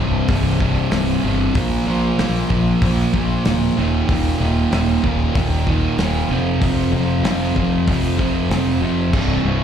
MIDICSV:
0, 0, Header, 1, 4, 480
1, 0, Start_track
1, 0, Tempo, 631579
1, 1182, Time_signature, 4, 2, 24, 8
1, 7325, End_track
2, 0, Start_track
2, 0, Title_t, "Distorted electric guitar"
2, 0, Program_c, 0, 30
2, 0, Note_on_c, 0, 36, 89
2, 0, Note_on_c, 0, 43, 94
2, 0, Note_on_c, 0, 48, 102
2, 201, Note_off_c, 0, 36, 0
2, 203, Note_off_c, 0, 43, 0
2, 208, Note_off_c, 0, 48, 0
2, 210, Note_on_c, 0, 36, 77
2, 212, Note_on_c, 0, 43, 83
2, 217, Note_on_c, 0, 48, 91
2, 446, Note_off_c, 0, 36, 0
2, 449, Note_off_c, 0, 43, 0
2, 455, Note_on_c, 0, 36, 90
2, 456, Note_off_c, 0, 48, 0
2, 458, Note_on_c, 0, 43, 94
2, 465, Note_on_c, 0, 48, 109
2, 683, Note_off_c, 0, 36, 0
2, 687, Note_off_c, 0, 43, 0
2, 688, Note_off_c, 0, 48, 0
2, 692, Note_on_c, 0, 36, 119
2, 696, Note_on_c, 0, 43, 115
2, 697, Note_on_c, 0, 48, 122
2, 917, Note_off_c, 0, 36, 0
2, 923, Note_off_c, 0, 43, 0
2, 925, Note_off_c, 0, 48, 0
2, 926, Note_on_c, 0, 36, 74
2, 932, Note_on_c, 0, 43, 95
2, 934, Note_on_c, 0, 48, 100
2, 1160, Note_off_c, 0, 36, 0
2, 1163, Note_off_c, 0, 43, 0
2, 1164, Note_off_c, 0, 48, 0
2, 1169, Note_on_c, 0, 46, 97
2, 1172, Note_on_c, 0, 53, 98
2, 1178, Note_on_c, 0, 58, 116
2, 1402, Note_off_c, 0, 46, 0
2, 1408, Note_off_c, 0, 53, 0
2, 1411, Note_on_c, 0, 46, 87
2, 1413, Note_off_c, 0, 58, 0
2, 1416, Note_on_c, 0, 58, 92
2, 1417, Note_on_c, 0, 53, 92
2, 1647, Note_off_c, 0, 46, 0
2, 1649, Note_off_c, 0, 53, 0
2, 1657, Note_on_c, 0, 46, 95
2, 1658, Note_off_c, 0, 58, 0
2, 1658, Note_on_c, 0, 53, 93
2, 1661, Note_on_c, 0, 58, 111
2, 1890, Note_off_c, 0, 46, 0
2, 1893, Note_off_c, 0, 53, 0
2, 1898, Note_off_c, 0, 58, 0
2, 1899, Note_on_c, 0, 46, 86
2, 1902, Note_on_c, 0, 53, 95
2, 1908, Note_on_c, 0, 58, 106
2, 2127, Note_off_c, 0, 46, 0
2, 2130, Note_off_c, 0, 53, 0
2, 2135, Note_off_c, 0, 58, 0
2, 2136, Note_on_c, 0, 46, 94
2, 2139, Note_on_c, 0, 53, 108
2, 2145, Note_on_c, 0, 58, 94
2, 2370, Note_off_c, 0, 46, 0
2, 2371, Note_off_c, 0, 53, 0
2, 2376, Note_off_c, 0, 58, 0
2, 2379, Note_on_c, 0, 46, 94
2, 2380, Note_on_c, 0, 53, 104
2, 2385, Note_on_c, 0, 58, 99
2, 2610, Note_off_c, 0, 46, 0
2, 2616, Note_off_c, 0, 53, 0
2, 2617, Note_off_c, 0, 58, 0
2, 2619, Note_on_c, 0, 46, 101
2, 2625, Note_on_c, 0, 53, 127
2, 2626, Note_on_c, 0, 58, 122
2, 2846, Note_off_c, 0, 46, 0
2, 2849, Note_off_c, 0, 53, 0
2, 2850, Note_off_c, 0, 58, 0
2, 2859, Note_on_c, 0, 39, 94
2, 2860, Note_on_c, 0, 46, 107
2, 2865, Note_on_c, 0, 51, 99
2, 3087, Note_off_c, 0, 39, 0
2, 3090, Note_off_c, 0, 46, 0
2, 3094, Note_off_c, 0, 51, 0
2, 3097, Note_on_c, 0, 39, 106
2, 3099, Note_on_c, 0, 46, 99
2, 3103, Note_on_c, 0, 51, 106
2, 3326, Note_off_c, 0, 39, 0
2, 3333, Note_off_c, 0, 46, 0
2, 3335, Note_off_c, 0, 51, 0
2, 3335, Note_on_c, 0, 39, 95
2, 3342, Note_on_c, 0, 46, 101
2, 3345, Note_on_c, 0, 51, 114
2, 3576, Note_off_c, 0, 39, 0
2, 3577, Note_off_c, 0, 46, 0
2, 3583, Note_off_c, 0, 51, 0
2, 3585, Note_on_c, 0, 39, 99
2, 3587, Note_on_c, 0, 46, 102
2, 3592, Note_on_c, 0, 51, 90
2, 3820, Note_off_c, 0, 39, 0
2, 3823, Note_off_c, 0, 46, 0
2, 3829, Note_on_c, 0, 39, 87
2, 3831, Note_off_c, 0, 51, 0
2, 3832, Note_on_c, 0, 46, 94
2, 3840, Note_on_c, 0, 51, 104
2, 4060, Note_off_c, 0, 39, 0
2, 4064, Note_off_c, 0, 46, 0
2, 4069, Note_off_c, 0, 51, 0
2, 4069, Note_on_c, 0, 39, 82
2, 4073, Note_on_c, 0, 46, 88
2, 4078, Note_on_c, 0, 51, 96
2, 4299, Note_off_c, 0, 39, 0
2, 4303, Note_off_c, 0, 46, 0
2, 4307, Note_off_c, 0, 51, 0
2, 4308, Note_on_c, 0, 39, 94
2, 4312, Note_on_c, 0, 46, 90
2, 4316, Note_on_c, 0, 51, 106
2, 4538, Note_off_c, 0, 39, 0
2, 4540, Note_off_c, 0, 46, 0
2, 4544, Note_off_c, 0, 51, 0
2, 4548, Note_on_c, 0, 39, 121
2, 4549, Note_on_c, 0, 46, 119
2, 4553, Note_on_c, 0, 51, 127
2, 4770, Note_off_c, 0, 39, 0
2, 4771, Note_off_c, 0, 46, 0
2, 4773, Note_off_c, 0, 51, 0
2, 4780, Note_on_c, 0, 41, 92
2, 4783, Note_on_c, 0, 48, 100
2, 4787, Note_on_c, 0, 53, 92
2, 5011, Note_off_c, 0, 41, 0
2, 5018, Note_off_c, 0, 48, 0
2, 5020, Note_off_c, 0, 53, 0
2, 5020, Note_on_c, 0, 41, 103
2, 5027, Note_on_c, 0, 48, 108
2, 5029, Note_on_c, 0, 53, 114
2, 5240, Note_off_c, 0, 41, 0
2, 5245, Note_off_c, 0, 48, 0
2, 5249, Note_off_c, 0, 53, 0
2, 5249, Note_on_c, 0, 41, 95
2, 5254, Note_on_c, 0, 48, 93
2, 5258, Note_on_c, 0, 53, 99
2, 5485, Note_off_c, 0, 41, 0
2, 5491, Note_off_c, 0, 48, 0
2, 5494, Note_on_c, 0, 41, 97
2, 5496, Note_off_c, 0, 53, 0
2, 5500, Note_on_c, 0, 48, 93
2, 5505, Note_on_c, 0, 53, 98
2, 5728, Note_off_c, 0, 41, 0
2, 5729, Note_off_c, 0, 48, 0
2, 5735, Note_off_c, 0, 53, 0
2, 5737, Note_on_c, 0, 41, 84
2, 5738, Note_on_c, 0, 48, 85
2, 5744, Note_on_c, 0, 53, 94
2, 5967, Note_off_c, 0, 41, 0
2, 5971, Note_off_c, 0, 48, 0
2, 5971, Note_off_c, 0, 53, 0
2, 5976, Note_on_c, 0, 41, 103
2, 5980, Note_on_c, 0, 48, 89
2, 5981, Note_on_c, 0, 53, 108
2, 6204, Note_off_c, 0, 41, 0
2, 6209, Note_off_c, 0, 48, 0
2, 6213, Note_off_c, 0, 53, 0
2, 6213, Note_on_c, 0, 41, 90
2, 6218, Note_on_c, 0, 48, 109
2, 6222, Note_on_c, 0, 53, 105
2, 6447, Note_off_c, 0, 41, 0
2, 6453, Note_off_c, 0, 48, 0
2, 6456, Note_on_c, 0, 41, 105
2, 6457, Note_off_c, 0, 53, 0
2, 6462, Note_on_c, 0, 48, 112
2, 6466, Note_on_c, 0, 53, 110
2, 6688, Note_off_c, 0, 41, 0
2, 6690, Note_off_c, 0, 48, 0
2, 6693, Note_off_c, 0, 53, 0
2, 6697, Note_on_c, 0, 41, 82
2, 6699, Note_on_c, 0, 48, 79
2, 6702, Note_on_c, 0, 53, 85
2, 6924, Note_off_c, 0, 41, 0
2, 6925, Note_off_c, 0, 48, 0
2, 6926, Note_off_c, 0, 53, 0
2, 6933, Note_on_c, 0, 36, 84
2, 6940, Note_on_c, 0, 48, 114
2, 6941, Note_on_c, 0, 43, 101
2, 7168, Note_off_c, 0, 36, 0
2, 7172, Note_off_c, 0, 43, 0
2, 7176, Note_off_c, 0, 48, 0
2, 7177, Note_on_c, 0, 36, 91
2, 7181, Note_on_c, 0, 43, 98
2, 7185, Note_on_c, 0, 48, 105
2, 7325, Note_off_c, 0, 36, 0
2, 7325, Note_off_c, 0, 43, 0
2, 7325, Note_off_c, 0, 48, 0
2, 7325, End_track
3, 0, Start_track
3, 0, Title_t, "Fingered electric bass"
3, 0, Program_c, 1, 33
3, 0, Note_on_c, 1, 24, 88
3, 158, Note_off_c, 1, 24, 0
3, 217, Note_on_c, 1, 24, 106
3, 581, Note_off_c, 1, 24, 0
3, 699, Note_on_c, 1, 24, 90
3, 881, Note_off_c, 1, 24, 0
3, 944, Note_on_c, 1, 31, 92
3, 1124, Note_off_c, 1, 31, 0
3, 1180, Note_on_c, 1, 34, 100
3, 1362, Note_off_c, 1, 34, 0
3, 1419, Note_on_c, 1, 34, 88
3, 1601, Note_off_c, 1, 34, 0
3, 1666, Note_on_c, 1, 34, 100
3, 1846, Note_off_c, 1, 34, 0
3, 1902, Note_on_c, 1, 34, 102
3, 2083, Note_off_c, 1, 34, 0
3, 2142, Note_on_c, 1, 34, 111
3, 2323, Note_off_c, 1, 34, 0
3, 2384, Note_on_c, 1, 34, 95
3, 2564, Note_off_c, 1, 34, 0
3, 2628, Note_on_c, 1, 26, 98
3, 2807, Note_off_c, 1, 26, 0
3, 2875, Note_on_c, 1, 27, 88
3, 3051, Note_off_c, 1, 27, 0
3, 3106, Note_on_c, 1, 27, 87
3, 3286, Note_off_c, 1, 27, 0
3, 3349, Note_on_c, 1, 27, 86
3, 3528, Note_off_c, 1, 27, 0
3, 3592, Note_on_c, 1, 27, 98
3, 3769, Note_off_c, 1, 27, 0
3, 3829, Note_on_c, 1, 27, 90
3, 4008, Note_off_c, 1, 27, 0
3, 4068, Note_on_c, 1, 27, 115
3, 4428, Note_off_c, 1, 27, 0
3, 4546, Note_on_c, 1, 27, 99
3, 4725, Note_off_c, 1, 27, 0
3, 4782, Note_on_c, 1, 29, 89
3, 4963, Note_off_c, 1, 29, 0
3, 5029, Note_on_c, 1, 29, 100
3, 5207, Note_off_c, 1, 29, 0
3, 5265, Note_on_c, 1, 29, 98
3, 5445, Note_off_c, 1, 29, 0
3, 5496, Note_on_c, 1, 29, 91
3, 5679, Note_off_c, 1, 29, 0
3, 5748, Note_on_c, 1, 29, 88
3, 5926, Note_off_c, 1, 29, 0
3, 5987, Note_on_c, 1, 29, 105
3, 6166, Note_off_c, 1, 29, 0
3, 6227, Note_on_c, 1, 29, 90
3, 6405, Note_off_c, 1, 29, 0
3, 6462, Note_on_c, 1, 29, 98
3, 6642, Note_off_c, 1, 29, 0
3, 6702, Note_on_c, 1, 29, 89
3, 6882, Note_off_c, 1, 29, 0
3, 6941, Note_on_c, 1, 24, 102
3, 7121, Note_off_c, 1, 24, 0
3, 7182, Note_on_c, 1, 24, 83
3, 7325, Note_off_c, 1, 24, 0
3, 7325, End_track
4, 0, Start_track
4, 0, Title_t, "Drums"
4, 214, Note_on_c, 9, 46, 78
4, 218, Note_on_c, 9, 36, 125
4, 290, Note_off_c, 9, 46, 0
4, 294, Note_off_c, 9, 36, 0
4, 459, Note_on_c, 9, 36, 80
4, 535, Note_off_c, 9, 36, 0
4, 695, Note_on_c, 9, 46, 72
4, 699, Note_on_c, 9, 38, 127
4, 771, Note_off_c, 9, 46, 0
4, 775, Note_off_c, 9, 38, 0
4, 1176, Note_on_c, 9, 46, 75
4, 1180, Note_on_c, 9, 36, 127
4, 1252, Note_off_c, 9, 46, 0
4, 1256, Note_off_c, 9, 36, 0
4, 1663, Note_on_c, 9, 46, 77
4, 1667, Note_on_c, 9, 38, 124
4, 1739, Note_off_c, 9, 46, 0
4, 1743, Note_off_c, 9, 38, 0
4, 1902, Note_on_c, 9, 36, 88
4, 1978, Note_off_c, 9, 36, 0
4, 2142, Note_on_c, 9, 36, 127
4, 2143, Note_on_c, 9, 46, 73
4, 2218, Note_off_c, 9, 36, 0
4, 2219, Note_off_c, 9, 46, 0
4, 2385, Note_on_c, 9, 36, 83
4, 2461, Note_off_c, 9, 36, 0
4, 2623, Note_on_c, 9, 46, 67
4, 2627, Note_on_c, 9, 38, 120
4, 2699, Note_off_c, 9, 46, 0
4, 2703, Note_off_c, 9, 38, 0
4, 3108, Note_on_c, 9, 36, 127
4, 3111, Note_on_c, 9, 46, 81
4, 3184, Note_off_c, 9, 36, 0
4, 3187, Note_off_c, 9, 46, 0
4, 3590, Note_on_c, 9, 46, 65
4, 3594, Note_on_c, 9, 38, 127
4, 3666, Note_off_c, 9, 46, 0
4, 3670, Note_off_c, 9, 38, 0
4, 3829, Note_on_c, 9, 36, 92
4, 3905, Note_off_c, 9, 36, 0
4, 4067, Note_on_c, 9, 46, 71
4, 4069, Note_on_c, 9, 36, 127
4, 4143, Note_off_c, 9, 46, 0
4, 4145, Note_off_c, 9, 36, 0
4, 4308, Note_on_c, 9, 36, 87
4, 4384, Note_off_c, 9, 36, 0
4, 4548, Note_on_c, 9, 46, 62
4, 4552, Note_on_c, 9, 38, 112
4, 4624, Note_off_c, 9, 46, 0
4, 4628, Note_off_c, 9, 38, 0
4, 5029, Note_on_c, 9, 36, 122
4, 5032, Note_on_c, 9, 46, 79
4, 5105, Note_off_c, 9, 36, 0
4, 5108, Note_off_c, 9, 46, 0
4, 5508, Note_on_c, 9, 46, 70
4, 5512, Note_on_c, 9, 38, 125
4, 5584, Note_off_c, 9, 46, 0
4, 5588, Note_off_c, 9, 38, 0
4, 5746, Note_on_c, 9, 36, 92
4, 5822, Note_off_c, 9, 36, 0
4, 5985, Note_on_c, 9, 46, 81
4, 5986, Note_on_c, 9, 36, 124
4, 6061, Note_off_c, 9, 46, 0
4, 6062, Note_off_c, 9, 36, 0
4, 6226, Note_on_c, 9, 36, 82
4, 6302, Note_off_c, 9, 36, 0
4, 6467, Note_on_c, 9, 46, 66
4, 6471, Note_on_c, 9, 38, 107
4, 6543, Note_off_c, 9, 46, 0
4, 6547, Note_off_c, 9, 38, 0
4, 6941, Note_on_c, 9, 49, 113
4, 6942, Note_on_c, 9, 36, 116
4, 7017, Note_off_c, 9, 49, 0
4, 7018, Note_off_c, 9, 36, 0
4, 7325, End_track
0, 0, End_of_file